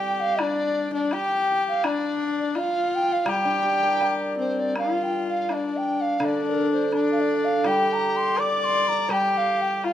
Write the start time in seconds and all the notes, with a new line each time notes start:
Already playing: G3 G4 G5
0.14 G5
0.20 F5
0.39 D4 D5, high woodblock
0.93 D4 D5
1.11 G4 G5, high woodblock
1.67 F5
1.84 D4 D5, high woodblock
2.39 D5
2.55 F4 F5, high woodblock
2.95 G5
3.12 F5
3.25 G3 G4, high woodblock
3.30 G5
3.45 D4
3.62 G4
3.83 A#4
4.01 D5, high woodblock, low woodblock
4.38 C4 C5
4.59 D5
4.76 F4 F5, high woodblock
5.03 G5
5.27 F5
5.49 D4 D5, high woodblock
5.77 G5
6.00 F5
6.20 D3 D4, high woodblock
6.24 D5
6.49 A#4
6.72 C5
6.92 D4 D5, high woodblock
7.11 F5
7.20 D5
7.44 F5
7.64 G3 G4 G5, high woodblock
7.92 A#5
8.16 C6
8.38 D5 D6, high woodblock
8.64 C6
8.88 A#5
9.09 G3 G4 G5, high woodblock
9.37 F5
9.61 G5
9.76 G5
9.84 F4 F5, high woodblock, low woodblock